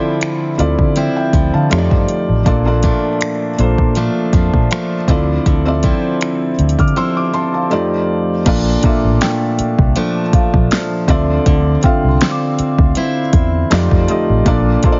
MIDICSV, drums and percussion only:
0, 0, Header, 1, 2, 480
1, 0, Start_track
1, 0, Tempo, 750000
1, 1575, Time_signature, 4, 2, 24, 8
1, 9598, End_track
2, 0, Start_track
2, 0, Title_t, "Drums"
2, 136, Note_on_c, 9, 42, 72
2, 145, Note_on_c, 9, 26, 112
2, 200, Note_off_c, 9, 42, 0
2, 209, Note_off_c, 9, 26, 0
2, 378, Note_on_c, 9, 42, 60
2, 442, Note_off_c, 9, 42, 0
2, 503, Note_on_c, 9, 36, 84
2, 567, Note_off_c, 9, 36, 0
2, 613, Note_on_c, 9, 42, 65
2, 677, Note_off_c, 9, 42, 0
2, 852, Note_on_c, 9, 36, 96
2, 853, Note_on_c, 9, 42, 67
2, 916, Note_off_c, 9, 36, 0
2, 917, Note_off_c, 9, 42, 0
2, 1094, Note_on_c, 9, 42, 62
2, 1105, Note_on_c, 9, 26, 101
2, 1158, Note_off_c, 9, 42, 0
2, 1169, Note_off_c, 9, 26, 0
2, 1224, Note_on_c, 9, 36, 94
2, 1288, Note_off_c, 9, 36, 0
2, 1334, Note_on_c, 9, 42, 57
2, 1398, Note_off_c, 9, 42, 0
2, 1574, Note_on_c, 9, 36, 109
2, 1575, Note_on_c, 9, 42, 65
2, 1638, Note_off_c, 9, 36, 0
2, 1639, Note_off_c, 9, 42, 0
2, 1809, Note_on_c, 9, 42, 65
2, 1816, Note_on_c, 9, 36, 93
2, 1873, Note_off_c, 9, 42, 0
2, 1880, Note_off_c, 9, 36, 0
2, 2053, Note_on_c, 9, 42, 74
2, 2062, Note_on_c, 9, 26, 111
2, 2117, Note_off_c, 9, 42, 0
2, 2126, Note_off_c, 9, 26, 0
2, 2295, Note_on_c, 9, 42, 58
2, 2359, Note_off_c, 9, 42, 0
2, 2422, Note_on_c, 9, 36, 94
2, 2486, Note_off_c, 9, 36, 0
2, 2530, Note_on_c, 9, 42, 66
2, 2594, Note_off_c, 9, 42, 0
2, 2771, Note_on_c, 9, 36, 95
2, 2772, Note_on_c, 9, 42, 67
2, 2835, Note_off_c, 9, 36, 0
2, 2836, Note_off_c, 9, 42, 0
2, 2903, Note_on_c, 9, 36, 96
2, 2967, Note_off_c, 9, 36, 0
2, 3013, Note_on_c, 9, 42, 66
2, 3024, Note_on_c, 9, 26, 101
2, 3077, Note_off_c, 9, 42, 0
2, 3088, Note_off_c, 9, 26, 0
2, 3251, Note_on_c, 9, 36, 99
2, 3253, Note_on_c, 9, 42, 59
2, 3315, Note_off_c, 9, 36, 0
2, 3317, Note_off_c, 9, 42, 0
2, 3495, Note_on_c, 9, 36, 107
2, 3496, Note_on_c, 9, 42, 65
2, 3559, Note_off_c, 9, 36, 0
2, 3560, Note_off_c, 9, 42, 0
2, 3730, Note_on_c, 9, 42, 67
2, 3736, Note_on_c, 9, 36, 88
2, 3794, Note_off_c, 9, 42, 0
2, 3800, Note_off_c, 9, 36, 0
2, 3975, Note_on_c, 9, 42, 72
2, 3984, Note_on_c, 9, 26, 115
2, 4039, Note_off_c, 9, 42, 0
2, 4048, Note_off_c, 9, 26, 0
2, 4216, Note_on_c, 9, 42, 56
2, 4280, Note_off_c, 9, 42, 0
2, 4282, Note_on_c, 9, 42, 51
2, 4344, Note_on_c, 9, 36, 91
2, 4346, Note_off_c, 9, 42, 0
2, 4346, Note_on_c, 9, 42, 43
2, 4401, Note_off_c, 9, 42, 0
2, 4401, Note_on_c, 9, 42, 34
2, 4408, Note_off_c, 9, 36, 0
2, 4465, Note_off_c, 9, 42, 0
2, 5414, Note_on_c, 9, 49, 99
2, 5415, Note_on_c, 9, 36, 109
2, 5415, Note_on_c, 9, 42, 71
2, 5478, Note_off_c, 9, 49, 0
2, 5479, Note_off_c, 9, 36, 0
2, 5479, Note_off_c, 9, 42, 0
2, 5650, Note_on_c, 9, 42, 70
2, 5656, Note_on_c, 9, 36, 95
2, 5714, Note_off_c, 9, 42, 0
2, 5720, Note_off_c, 9, 36, 0
2, 5895, Note_on_c, 9, 42, 81
2, 5903, Note_on_c, 9, 38, 127
2, 5959, Note_off_c, 9, 42, 0
2, 5967, Note_off_c, 9, 38, 0
2, 6136, Note_on_c, 9, 42, 64
2, 6200, Note_off_c, 9, 42, 0
2, 6263, Note_on_c, 9, 36, 97
2, 6327, Note_off_c, 9, 36, 0
2, 6372, Note_on_c, 9, 42, 74
2, 6436, Note_off_c, 9, 42, 0
2, 6612, Note_on_c, 9, 36, 100
2, 6613, Note_on_c, 9, 42, 70
2, 6676, Note_off_c, 9, 36, 0
2, 6677, Note_off_c, 9, 42, 0
2, 6744, Note_on_c, 9, 36, 106
2, 6808, Note_off_c, 9, 36, 0
2, 6855, Note_on_c, 9, 42, 69
2, 6866, Note_on_c, 9, 38, 105
2, 6919, Note_off_c, 9, 42, 0
2, 6930, Note_off_c, 9, 38, 0
2, 7091, Note_on_c, 9, 36, 101
2, 7095, Note_on_c, 9, 42, 62
2, 7155, Note_off_c, 9, 36, 0
2, 7159, Note_off_c, 9, 42, 0
2, 7335, Note_on_c, 9, 36, 112
2, 7335, Note_on_c, 9, 42, 72
2, 7399, Note_off_c, 9, 36, 0
2, 7399, Note_off_c, 9, 42, 0
2, 7569, Note_on_c, 9, 42, 68
2, 7576, Note_on_c, 9, 36, 92
2, 7633, Note_off_c, 9, 42, 0
2, 7640, Note_off_c, 9, 36, 0
2, 7813, Note_on_c, 9, 42, 79
2, 7822, Note_on_c, 9, 38, 127
2, 7877, Note_off_c, 9, 42, 0
2, 7886, Note_off_c, 9, 38, 0
2, 8055, Note_on_c, 9, 42, 63
2, 8119, Note_off_c, 9, 42, 0
2, 8183, Note_on_c, 9, 36, 99
2, 8247, Note_off_c, 9, 36, 0
2, 8290, Note_on_c, 9, 42, 69
2, 8354, Note_off_c, 9, 42, 0
2, 8531, Note_on_c, 9, 42, 69
2, 8532, Note_on_c, 9, 36, 98
2, 8595, Note_off_c, 9, 42, 0
2, 8596, Note_off_c, 9, 36, 0
2, 8774, Note_on_c, 9, 42, 68
2, 8785, Note_on_c, 9, 38, 110
2, 8838, Note_off_c, 9, 42, 0
2, 8849, Note_off_c, 9, 38, 0
2, 8905, Note_on_c, 9, 36, 97
2, 8969, Note_off_c, 9, 36, 0
2, 9014, Note_on_c, 9, 42, 59
2, 9078, Note_off_c, 9, 42, 0
2, 9254, Note_on_c, 9, 36, 112
2, 9254, Note_on_c, 9, 42, 70
2, 9318, Note_off_c, 9, 36, 0
2, 9318, Note_off_c, 9, 42, 0
2, 9489, Note_on_c, 9, 42, 70
2, 9496, Note_on_c, 9, 36, 96
2, 9553, Note_off_c, 9, 42, 0
2, 9560, Note_off_c, 9, 36, 0
2, 9598, End_track
0, 0, End_of_file